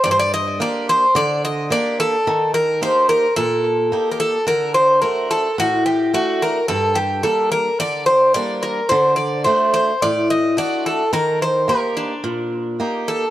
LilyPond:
<<
  \new Staff \with { instrumentName = "Bouzouki" } { \time 4/4 \tempo 4 = 108 d''32 c''32 d''16 ees''8 d''8 c''8 d''8 ees''8 d''8 a'8~ | a'8 bes'8 c''8 bes'8 a'4~ a'16. bes'32 a'8 | bes'8 c''8 bes'8 a'8 fis'8 g'8 fis'8 bes'8 | a'8 g'8 a'8 bes'8 d''8 c''8 d''8 bes'8 |
c''8 d''8 c''8 c''8 d''8 ees''8 d''8 a'8 | bes'8 c''8 bes'8 d'4. r8 a'8 | }
  \new Staff \with { instrumentName = "Steel-string acoustic guitar" } { \time 4/4 g,4 <bes d' g'>4 d4 <bes d' g'>4 | ees4 <bes ees' g'>4 bes,4 <bes ees' g'>4 | d4 <a d' fis'>4 a,4 <a d' fis'>4 | g,4 <g bes d'>4 d4 <g bes d'>4 |
d4 <a d' fis'>4 a,4 <a d' fis'>4 | ees4 <bes ees' g'>4 bes,4 <bes ees' g'>4 | }
>>